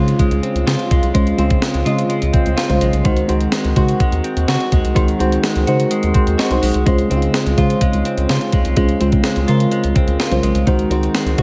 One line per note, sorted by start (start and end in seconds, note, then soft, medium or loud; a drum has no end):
0.00 0.14 C#3 loud
0.00 1.38 C#3 medium
0.00 3.02 C#3 medium
0.00 0.19 G#3 medium
0.00 1.14 G#3 medium
0.00 10.63 G#3 medium
0.00 0.43 C4 medium
0.00 10.63 C4 medium
0.00 1.15 C#4 medium
0.00 3.05 D#4 soft
0.00 0.66 F4 medium
0.00 1.15 F4 medium
0.00 3.02 F4 medium
0.00 1.15 C5 medium
0.08 closed hi-hat medium
0.19 0.90 G#3 medium
0.19 kick medium
0.19 closed hi-hat medium
0.31 0.40 C#2 medium
0.31 closed hi-hat medium
0.43 1.38 C4 medium
0.43 closed hi-hat medium
0.55 0.64 C#2 medium
0.55 closed hi-hat soft
0.67 0.76 C#3 loud
0.67 1.84 F4 medium
0.67 snare loud
0.67 closed hi-hat medium
0.79 closed hi-hat medium
0.91 1.00 C#2 medium
0.91 1.14 G#3 medium
0.91 kick loud
0.91 closed hi-hat medium
1.03 1.12 C2 medium
1.03 closed hi-hat soft
1.14 1.33 C#2 loud
1.14 1.62 G#3 medium
1.14 1.35 G#3 medium
1.14 1.35 C#4 medium
1.14 1.35 F4 medium
1.14 1.35 C5 medium
1.14 kick loud
1.14 closed hi-hat medium
1.27 closed hi-hat soft
1.38 1.56 C#2 loud
1.38 1.79 C#3 medium
1.38 1.79 G#3 medium
1.38 2.33 C4 medium
1.38 1.79 F4 medium
1.38 1.80 C5 medium
1.38 closed hi-hat medium
1.50 kick loud
1.50 closed hi-hat soft
1.62 2.09 G#3 medium
1.62 snare loud
1.62 closed hi-hat loud
1.74 1.83 C#2 loud
1.74 closed hi-hat medium
1.85 2.57 C#3 medium
1.85 2.04 C#3 loud
1.85 2.57 G#3 medium
1.85 2.56 F4 medium
1.85 2.58 F4 medium
1.85 2.58 D#5 medium
1.85 closed hi-hat medium
1.99 closed hi-hat medium
2.09 2.81 G#3 medium
2.09 closed hi-hat medium
2.22 2.31 C#2 medium
2.22 closed hi-hat medium
2.33 3.29 C4 medium
2.33 kick loud
2.33 closed hi-hat medium
2.46 2.55 C#2 medium
2.46 closed hi-hat soft
2.57 3.10 F4 medium
2.57 snare loud
2.57 closed hi-hat medium
2.69 2.79 C2 medium
2.69 3.00 C#3 medium
2.69 3.00 G#3 medium
2.69 3.00 F4 medium
2.69 3.01 C5 medium
2.69 closed hi-hat medium
2.81 2.91 B1 medium
2.81 3.52 G#3 medium
2.81 closed hi-hat medium
2.93 3.02 C2 medium
2.93 closed hi-hat medium
3.04 3.23 C#2 loud
3.04 4.94 D#3 medium
3.04 6.83 D#3 medium
3.04 3.25 G#3 medium
3.04 3.26 D#4 medium
3.04 3.26 F#4 medium
3.04 6.83 F#4 medium
3.04 3.26 C5 medium
3.04 kick loud
3.04 closed hi-hat medium
3.17 closed hi-hat soft
3.28 3.47 C#2 loud
3.28 3.69 G#3 medium
3.28 4.24 C4 medium
3.28 3.69 D#4 medium
3.28 3.70 F#4 medium
3.28 3.70 C5 medium
3.28 closed hi-hat medium
3.41 closed hi-hat soft
3.52 4.00 G#3 medium
3.52 snare loud
3.52 closed hi-hat medium
3.65 3.74 C#2 loud
3.65 closed hi-hat medium
3.76 3.94 C#3 loud
3.76 4.58 G#3 medium
3.76 4.58 D#4 medium
3.76 4.47 F#4 medium
3.76 4.58 F#4 medium
3.76 4.59 C5 medium
3.76 kick medium
3.76 closed hi-hat medium
3.88 closed hi-hat medium
4.00 4.72 G#3 medium
4.00 kick medium
4.00 closed hi-hat medium
4.12 4.21 D#2 medium
4.12 closed hi-hat medium
4.24 5.19 C4 medium
4.24 closed hi-hat medium
4.37 4.45 D#2 medium
4.37 closed hi-hat soft
4.48 4.57 C#3 loud
4.48 5.66 F#4 medium
4.48 snare loud
4.48 closed hi-hat medium
4.60 closed hi-hat medium
4.72 4.81 D#2 medium
4.72 5.43 G#3 medium
4.72 kick medium
4.72 closed hi-hat medium
4.85 4.93 C2 medium
4.85 closed hi-hat medium
4.95 5.14 C#2 loud
4.95 6.86 D#3 medium
4.95 5.16 G#3 medium
4.95 5.16 D#4 medium
4.95 5.16 F#4 medium
4.95 5.16 C5 medium
4.95 kick loud
4.95 closed hi-hat medium
5.08 closed hi-hat soft
5.19 5.38 C#2 loud
5.19 5.60 G#3 medium
5.19 6.14 C4 medium
5.19 5.61 D#4 medium
5.19 5.61 F#4 medium
5.19 5.61 C5 medium
5.19 closed hi-hat medium
5.32 closed hi-hat soft
5.43 5.91 G#3 medium
5.43 snare loud
5.43 closed hi-hat medium
5.56 5.65 C#2 medium
5.56 closed hi-hat medium
5.67 5.85 C#3 loud
5.67 6.39 G#3 medium
5.67 6.39 D#4 medium
5.67 6.37 F#4 medium
5.67 6.39 F#4 medium
5.67 6.39 C5 medium
5.67 closed hi-hat medium
5.80 closed hi-hat medium
5.91 6.62 G#3 medium
5.91 closed hi-hat medium
6.03 6.12 D#2 medium
6.03 closed hi-hat soft
6.14 7.10 C4 medium
6.14 6.37 C6 medium
6.14 kick loud
6.14 closed hi-hat medium
6.27 6.36 D#2 medium
6.27 closed hi-hat soft
6.38 6.91 F#4 medium
6.38 6.83 D#5 medium
6.38 snare loud
6.38 closed hi-hat medium
6.50 6.60 C2 medium
6.50 6.81 G#3 medium
6.50 6.81 D#4 medium
6.50 6.81 F#4 medium
6.50 6.82 C5 medium
6.50 closed hi-hat medium
6.62 6.72 B1 loud
6.62 6.85 G#3 medium
6.62 open hi-hat medium
6.74 6.84 C2 medium
6.74 closed hi-hat soft
6.86 7.04 C#2 loud
6.86 10.64 C#3 medium
6.86 7.34 G#3 medium
6.86 7.07 G#3 medium
6.86 7.07 C#4 medium
6.86 7.07 F4 medium
6.86 10.64 F4 medium
6.86 7.07 C5 medium
6.86 kick loud
6.86 closed hi-hat medium
6.98 closed hi-hat soft
7.09 7.28 C#2 loud
7.09 7.51 C#3 medium
7.09 7.51 G#3 medium
7.09 8.05 C4 medium
7.09 7.16 D#4 medium
7.09 7.51 C5 medium
7.09 closed hi-hat medium
7.16 7.54 F4 medium
7.22 closed hi-hat soft
7.34 7.81 G#3 medium
7.34 snare loud
7.34 closed hi-hat medium
7.46 7.55 C#2 medium
7.46 closed hi-hat medium
7.57 8.39 C#3 medium
7.57 7.76 C#3 loud
7.57 8.39 G#3 medium
7.57 8.28 F4 medium
7.57 8.39 F4 medium
7.57 8.40 C5 medium
7.57 kick medium
7.57 closed hi-hat medium
7.70 closed hi-hat medium
7.81 8.53 G#3 medium
7.81 kick medium
7.81 closed hi-hat medium
7.93 8.03 C#2 medium
7.93 closed hi-hat medium
8.05 9.00 C4 medium
8.05 closed hi-hat medium
8.18 8.26 C#2 medium
8.18 closed hi-hat soft
8.29 8.39 C#3 loud
8.29 9.47 F4 medium
8.29 snare loud
8.29 closed hi-hat medium
8.41 closed hi-hat medium
8.52 8.62 C#2 loud
8.52 8.76 G#3 medium
8.52 kick medium
8.52 closed hi-hat medium
8.65 8.74 C2 medium
8.65 closed hi-hat medium
8.76 8.95 C#2 loud
8.76 8.97 G#3 medium
8.76 9.24 G#3 medium
8.76 8.97 C#4 medium
8.76 8.97 F4 medium
8.76 8.98 C5 medium
8.76 kick loud
8.76 closed hi-hat medium
8.89 closed hi-hat soft
9.00 9.19 C#2 loud
9.00 9.41 C#3 medium
9.00 9.41 G#3 medium
9.00 9.95 C4 medium
9.00 9.41 F4 medium
9.00 9.42 C5 medium
9.00 closed hi-hat medium
9.12 kick loud
9.12 closed hi-hat soft
9.24 9.71 G#3 medium
9.24 snare loud
9.24 closed hi-hat loud
9.36 9.45 C#2 loud
9.36 closed hi-hat medium
9.48 10.20 C#3 medium
9.48 9.67 C#3 loud
9.48 10.20 G#3 medium
9.48 10.18 F4 medium
9.48 10.20 F4 medium
9.48 10.20 A#4 medium
9.48 closed hi-hat medium
9.60 closed hi-hat medium
9.72 10.43 G#3 medium
9.72 closed hi-hat medium
9.84 9.93 C#2 medium
9.84 closed hi-hat medium
9.95 10.90 C4 medium
9.95 kick loud
9.95 closed hi-hat medium
10.08 10.17 C#2 medium
10.08 closed hi-hat soft
10.20 10.72 F4 medium
10.20 snare loud
10.20 closed hi-hat medium
10.31 10.40 C2 loud
10.31 10.62 C#3 medium
10.31 10.62 G#3 medium
10.31 10.62 F4 medium
10.31 10.63 C5 medium
10.31 closed hi-hat medium
10.43 10.52 B1 medium
10.43 11.15 G#3 medium
10.43 closed hi-hat medium
10.55 10.64 C2 medium
10.55 closed hi-hat medium
10.67 10.85 C#2 loud
10.67 11.42 D#3 medium
10.67 10.88 G#3 medium
10.67 11.42 G#3 medium
10.67 11.42 C4 medium
10.67 10.88 D#4 medium
10.67 11.42 F#4 medium
10.67 10.88 F#4 medium
10.67 10.88 C5 medium
10.67 kick loud
10.67 closed hi-hat medium
10.79 closed hi-hat soft
10.90 11.08 C#2 medium
10.90 11.32 G#3 medium
10.90 11.42 C4 medium
10.90 11.32 D#4 medium
10.90 11.32 F#4 medium
10.90 11.32 C5 medium
10.90 closed hi-hat medium
11.03 closed hi-hat soft
11.15 11.42 G#3 medium
11.15 snare loud
11.15 closed hi-hat loud
11.26 11.35 C#2 loud
11.26 closed hi-hat medium
11.38 11.42 C#3 loud
11.38 11.42 G#3 medium
11.38 11.42 D#4 medium
11.38 11.42 F#4 medium
11.38 11.42 C5 medium
11.38 kick medium
11.38 closed hi-hat medium